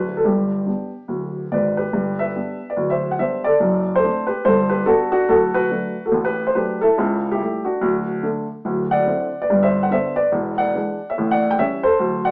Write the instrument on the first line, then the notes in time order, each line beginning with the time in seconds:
upright piano
Already playing: D1 D2 F#3 A3 D4 B4
0.17 A4
0.25 G1 G2 G4
0.66 G3 B3 D4
1.08 D1 D2
1.52 G#1 G#2 B4 D5
1.77 G4 B4
1.93 G1 G2
2.19 B4 E5
2.36 G3 B3 D4
2.70 B4 D5
2.76 D1 D2
2.90 C5 E5
3.11 F#5
3.19 G3 B3 D4 C5 E5
3.44 A4 D5
3.60 F#1 F#2
3.96 A4 C5
4.04 A3 C4 D4
4.27 G4 B4
4.45 G1 G2 A4 C5
4.69 G4 B4
4.85 G3 B3 D4 F#4 A4
5.12 D4 F#4
5.29 D1 D2 F#4 A4
5.54 F#4 B4
5.70 F#3 A3 D4
6.06 F#4 A4
6.11 A1 A2
6.25 G4 B4
6.47 C5
6.55 F#3 A3 D4 G4 B4
6.81 E4 A4
6.98 C#2 C#3
7.32 E4 G4
7.41 G3 A3 E4
7.65 D4 F#4
7.81 D1 D2
8.23 D3 A3 D4
8.65 D1 D2
8.91 D5 F#5
9.07 D3 C4 E4
9.42 B4 D5
9.50 G1 G2
9.63 C5 E5
9.83 F#5
9.91 D3 B3 D4 C5 E5
10.16 B4 D5
10.32 E1 E2
10.58 D5 F#5
10.75 E3 G#3 D4
11.10 C#5 E5
11.18 A1 A2
11.31 D5 F#5
11.51 G5
11.59 E3 G3 C#4 C#5 E5
11.83 A4 C5
11.99 D1 D2
12.25 D5 F#5